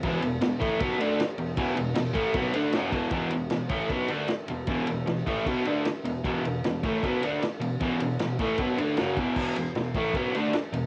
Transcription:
0.03 E2 B2 E3, kick, ride
0.21 E2 B2, ride
0.41 E2 B2, snare, ride
0.60 A2 E3 A3, kick, ride
0.79 B2 F#3 B3, kick, ride
0.99 D3 A3 D4, ride
1.20 snare, ride
1.38 E2 B2, ride
1.57 E2 B2 E3, kick, ride
1.76 E2 B2, ride
1.95 E2 B2, snare, ride
2.13 A2 E3 A3, kick, ride
2.34 B2 F#3 B3, kick, ride
2.54 D3 A3 D4, ride
2.73 F#2 C#3 F#3, snare, ride
2.91 E2 B2 E3, kick, ride
3.11 E2 B2 E3, kick, ride
3.31 E2 B2, ride
3.50 E2 B2, snare, ride
3.69 A2 E3 A3, kick, ride
3.89 B2 F#3 B3, kick, ride
4.08 D3 A3 D4, ride
4.28 snare, ride
4.48 E2 B2, ride
4.67 E2 B2 E3, kick, ride
4.87 E2 B2, ride
5.06 E2 B2, snare, ride
5.26 A2 E3 A3, kick, ride
5.46 B2 F#3 B3, kick, ride
5.65 D3 A3 D4, ride
5.85 snare, ride
6.05 E2 B2, ride
6.24 E2 B2 E3, kick, ride
6.45 E2 B2, ride
6.64 E2 B2, snare, ride
6.83 A2 E3 A3, kick, ride
7.03 B2 F#3 B3, kick, ride
7.23 D3 A3 D4, ride
7.42 snare, ride
7.60 E2 B2, ride
7.80 E2 B2 E3, kick, ride
8.00 E2 B2, ride
8.19 E2 B2, snare, ride
8.39 A2 E3 A3, kick, ride
8.58 B2 F#3 B3, kick, ride
8.78 D3 A3 D4, ride
8.97 F#2 C#3 F#3, snare, ride
9.17 E2 B2 E3, kick, ride
9.36 E2 B2 E3, kick, crash
9.56 E2 B2, ride
9.75 E2 B2, snare, ride
9.94 A2 E3 A3, kick, ride
10.14 B2 F#3 B3, kick, ride
10.33 D3 A3 D4, ride
10.53 snare, ride
10.73 E2 B2, ride

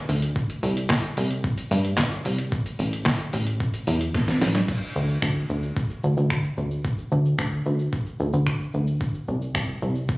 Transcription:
0.09 D2, open hi-hat, shaker
0.22 closed hi-hat, shaker
0.36 kick, shaker
0.50 closed hi-hat, shaker
0.63 C2, open hi-hat, shaker
0.77 closed hi-hat, shaker
0.90 kick, snare, clap, shaker
1.04 closed hi-hat, shaker
1.17 C2, open hi-hat, shaker
1.31 closed hi-hat, shaker
1.44 kick, shaker
1.58 closed hi-hat, shaker
1.71 G2, open hi-hat, shaker
1.85 closed hi-hat, shaker
1.97 kick, snare, clap, shaker
2.12 closed hi-hat, shaker
2.25 C2, open hi-hat, shaker
2.38 closed hi-hat, shaker
2.52 kick, shaker
2.66 closed hi-hat, shaker
2.79 A1, open hi-hat, shaker
2.93 closed hi-hat, shaker
3.06 kick, snare, clap, shaker
3.20 closed hi-hat, shaker
3.33 A1, open hi-hat, shaker
3.47 closed hi-hat, shaker
3.60 kick, shaker
3.74 closed hi-hat, shaker
3.87 E2, open hi-hat, shaker
4.01 closed hi-hat, shaker
4.14 kick, snare, shaker
4.28 snare, closed hi-hat, shaker
4.41 A1, snare, open hi-hat, shaker
4.55 snare, closed hi-hat, shaker
4.68 kick, crash, shaker
4.82 shaker
4.95 D2, shaker
5.09 shaker
5.22 D2, finger snap, kick, shaker
5.36 shaker
5.49 D2, shaker
5.63 shaker
5.76 kick, shaker
5.90 shaker
6.03 D2, shaker
6.17 D2, shaker
6.30 finger snap, kick, shaker
6.44 shaker
6.57 D2, shaker
6.71 shaker
6.85 kick, shaker
6.98 shaker
7.12 D2, shaker
7.25 shaker
7.39 D2, finger snap, kick, shaker
7.52 shaker
7.65 D2, shaker
7.79 shaker
7.93 kick, shaker
8.06 shaker
8.20 D2, shaker
8.33 D2, shaker
8.47 finger snap, kick, shaker
8.60 shaker
8.74 D2, shaker
8.87 shaker
9.01 kick, shaker
9.14 shaker
9.28 C2, shaker
9.42 shaker
9.55 C2, finger snap, kick, shaker
9.68 shaker
9.82 C2, shaker
9.95 shaker
10.09 kick, shaker

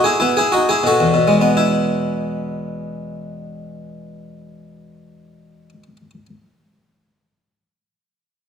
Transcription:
0.04 E4 G#4
0.20 B3 E4
0.37 E4 G#4
0.52 D#4 F#4
0.69 E4 G#4
0.83 B2 F#4 A4
1.00 E2
1.14 B2
1.28 G#3
1.41 B3
1.57 E4

